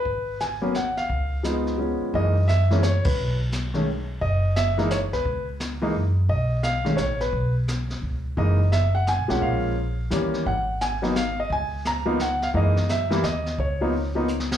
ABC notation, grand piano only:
X:1
M:3/4
L:1/8
Q:"Swing" 1/4=173
K:F#
V:1 name="Grand piano"
B2 g2 f e- | e3 z3 | d2 =e2 c B- | B z4 z |
d2 =e2 c B- | B z4 z | d2 e2 c B- | B z4 z |
d2 =e f g f | e4 z2 | f2 g2 e d | g2 a2 f e |
d2 =e2 d2 | c4- c z |]
V:2 name="Grand piano"
z3 [F,A,B,C] z2 | z2 [E,G,B,D]2 [E,G,B,C]2 | [=E,G,A,D] z2 [E,G,A,C] z2 | z3 [D,G,=A,C] z2 |
z3 [=E,G,A,D] z2 | z3 [=E,G,A,D] z2 | z3 [D,G,=A,C] z2 | z6 |
[=E,G,A,D] z4 [^E,G,A,C]- | [E,G,A,C]2 z2 [=E,=G,A,C]2 | z3 [F,A,B,D] z2 | z3 [E,A,B,D] z2 |
[=E,G,A,D] z2 [E,=G,A,=E] z2 | z [E,A,B,D] z [E,A,B,D] z2 |]